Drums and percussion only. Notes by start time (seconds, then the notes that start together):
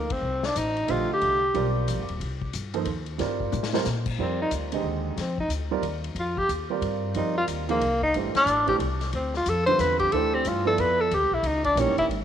0.10 kick, ride
0.43 snare
0.56 hi-hat pedal, ride
0.77 ride
0.88 ride
1.21 ride
1.54 ride
1.88 hi-hat pedal, ride
2.09 ride
2.21 ride
2.42 kick
2.53 hi-hat pedal, ride
2.74 ride
2.85 ride
3.06 ride
3.19 snare, ride
3.40 kick
3.52 hi-hat pedal, mid tom
3.63 snare
3.74 snare
3.84 snare, hi-hat pedal
4.06 kick, crash
4.51 hi-hat pedal, ride
4.72 ride
5.17 snare, ride
5.38 kick
5.50 hi-hat pedal, ride
5.83 ride
6.04 ride
6.16 ride
6.37 kick
6.49 hi-hat pedal, ride
6.82 ride
7.14 ride
7.48 hi-hat pedal, ride
7.69 ride
7.81 ride
8.02 kick
8.14 ride
8.35 snare, ride
8.47 hi-hat pedal, ride
8.67 kick, ride
8.80 ride
9.01 snare, ride
9.13 ride
9.34 snare
9.46 hi-hat pedal, ride
9.67 ride
9.79 snare, hi-hat pedal, ride
9.99 kick, ride
10.12 ride
10.45 hi-hat pedal, ride
10.78 ride
11.11 ride
11.44 ride
11.64 kick, ride
11.77 hi-hat pedal, ride
11.98 kick, ride
12.11 ride